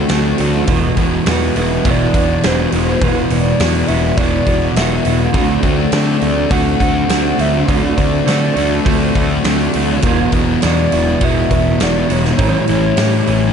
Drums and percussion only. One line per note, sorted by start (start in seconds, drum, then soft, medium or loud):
0.09 snare loud
0.09 open hi-hat medium
0.38 open hi-hat medium
0.67 kick loud
0.67 open hi-hat medium
0.97 kick medium
0.97 open hi-hat soft
1.26 snare loud
1.26 open hi-hat medium
1.56 open hi-hat soft
1.85 kick loud
1.85 open hi-hat medium
2.14 kick medium
2.14 open hi-hat medium
2.43 snare loud
2.43 open hi-hat medium
2.72 open hi-hat medium
3.02 kick loud
3.02 open hi-hat medium
3.30 open hi-hat medium
3.60 snare loud
3.60 open hi-hat medium
3.88 open hi-hat medium
4.18 kick loud
4.18 open hi-hat medium
4.47 kick medium
4.47 open hi-hat medium
4.76 snare loud
4.76 open hi-hat medium
5.05 open hi-hat medium
5.34 kick loud
5.34 open hi-hat medium
5.63 kick medium
5.63 open hi-hat soft
5.92 snare loud
5.92 open hi-hat medium
6.22 open hi-hat soft
6.51 kick loud
6.51 open hi-hat medium
6.80 kick medium
6.80 open hi-hat medium
7.09 snare loud
7.09 open hi-hat medium
7.39 open hi-hat medium
7.69 kick loud
7.69 open hi-hat medium
7.98 kick medium
7.98 open hi-hat medium
8.28 snare loud
8.28 open hi-hat medium
8.56 open hi-hat medium
8.86 kick loud
8.86 open hi-hat medium
9.15 kick medium
9.15 open hi-hat medium
9.44 snare loud
9.44 open hi-hat medium
9.74 open hi-hat medium
10.02 kick loud
10.02 open hi-hat medium
10.32 kick medium
10.32 open hi-hat medium
10.62 snare loud
10.62 open hi-hat medium
10.92 open hi-hat soft
11.21 kick loud
11.21 open hi-hat medium
11.51 kick medium
11.51 open hi-hat medium
11.80 snare loud
11.80 open hi-hat medium
12.10 open hi-hat medium
12.25 snare soft
12.39 kick loud
12.39 open hi-hat medium
12.68 open hi-hat soft
12.97 snare loud
12.97 open hi-hat medium
13.27 open hi-hat soft